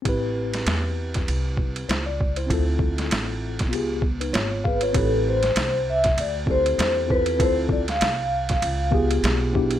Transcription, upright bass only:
X:1
M:4/4
L:1/8
Q:"Swing 16ths" 1/4=98
K:Am
V:1 name="Upright bass" clef=bass
A,,,2 E,,2 C,,2 ^C,,2 | D,,2 A,,,2 ^C,,2 ^G,,,2 | A,,,2 C,,2 D,,2 E,,2 | D,,2 C,,2 ^C,,2 B,,,2 |]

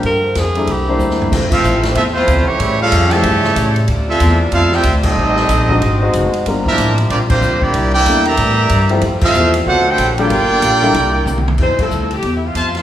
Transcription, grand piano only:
X:1
M:4/4
L:1/8
Q:"Swing" 1/4=187
K:F
V:1 name="Grand piano"
z3 [G,B,DEA] z [G,B,DEc]3 | [F,A,CFG]4- [F,A,CFG] z3 | z3 [F,A,^CEG] z4 | z8 |
z3 [_A,CD_E_G] z [A,CEG]3 | [G,B,DFB]4- [G,B,DFB] z3 | z2 [G,B,DEA] z4 [F,A,CEG] | z2 [F,A,CEG] z4 [G,B,DFA] |
z3 [G,B,DEA] z4 | [_G,=B,_E=E_A] [=G,CEF=A]2 z4 z |]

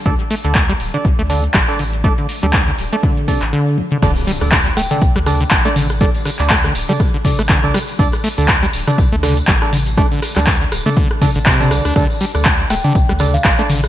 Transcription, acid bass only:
X:1
M:4/4
L:1/16
Q:"Swing 16ths" 1/4=121
K:Cdor
V:1 name="Acid bass" clef=bass
D, z A, D, z G, z D, z A, D, z G, z D, z | A, D, z G, z D, z A, D,2 C, z D,2 D,, D, | D, z G, z D, z A, D, z G, z D, z A, D, z | G, z D, z A, D, z G, z D, z A, D, z G, z |
D, z A, D, z G, z D, z A, D, z G, z D, z | A, D, z G, z D, z A, D, z D, D, C,2 D, D | D, z G, z D, z A, D, z G, z D, z A, D, z |]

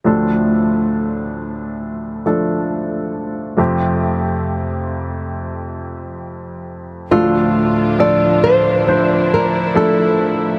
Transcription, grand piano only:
X:1
M:4/4
L:1/8
Q:1/4=68
K:Dm
V:1 name="Grand piano"
[F,A,DA]4- [F,A,DA] [F,A,DA]3 | [F,A,CG]8 | [F,A,DA]2 [F,A,DA]2 [F,Dc]2 [F,A,DA]2 |]
V:2 name="Grand piano" clef=bass
[D,,A,,]8 | [F,,C,]8 | [D,,A,,]8 |]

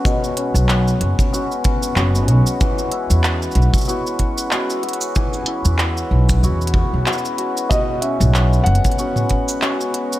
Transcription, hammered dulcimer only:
X:1
M:4/4
L:1/8
Q:"Swing 16ths" 1/4=94
K:E
V:1 name="Hammered dulcimer"
[B,,B,CF] C3 [B,CF]2 [B,CF] F | E, E3 [B,EF]2 [B,EF] F | E, E3 [B,EF]2 [B,EF] F | B,, C3 [B,CF]2 [B,CF] F |]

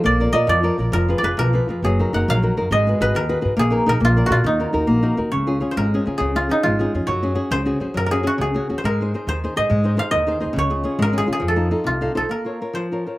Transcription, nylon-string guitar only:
X:1
M:6/8
L:1/8
Q:3/8=137
K:Ebm
V:1 name="Nylon-string guitar"
B, [FB=d] [FBd] F, [FBd] [FBd] | F, [FAc] [FAc] F, [FAc] [FAc] | G, [EGB] [EGB] G, [EGB] [EGB] | A, [GAc] [GAc] E, [GAc] [GAc] |
B, [EAB] [EAB] B, [AB=d] [ABd] | E, [EGB] [EGB] B, [EGB] [EGB] | [K:Db] D, [DFA] [DFA] A, [DFA] [DFA] | D, [DFA] [DFA] A, [DFA] [DFA] |
G, [DGA] [DGA] D, [DGA] [DGA] | G, [DGA] [DGA] D, [DGA] [DGA] | A, [EAc] [EAc] E, [EAc] [EAc] | A, [EAc] [EAc] E, [EAc] [EAc] |
D, [DFA] [DFA] A, [DFA] [DFA] | F, [EF=A] [EFA] C, [EFAf] [EFAc] | [K:Bbm] B, [FBd] [FBd] F, [FBd] [FBd] |]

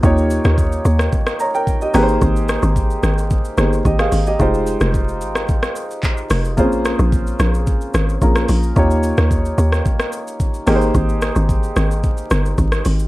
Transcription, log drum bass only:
X:1
M:4/4
L:1/16
Q:1/4=110
K:Ab
V:1 name="Log drum bass" clef=bass
E,,3 E,,3 E,,2 z6 A,,,2 | A,,,3 A,,,3 A,,,3 z G,,,2 A,,,2 A,,,2 | F,,,3 F,,,3 A,,,2 z6 F,,,2 | B,,,3 B,,,3 B,,,3 z A,,,2 B,,,2 B,,,2 |
E,,3 E,,3 E,,2 z6 A,,,2 | A,,,3 A,,,3 A,,,3 z G,,,2 A,,,2 A,,,2 |]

